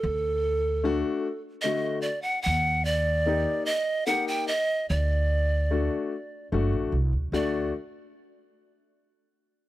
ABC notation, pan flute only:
X:1
M:3/4
L:1/16
Q:1/4=74
K:none
V:1 name="Pan flute"
A6- A z _e2 d ^f | ^f2 d4 _e2 f g e2 | d8 z4 | d2 z8 z2 |]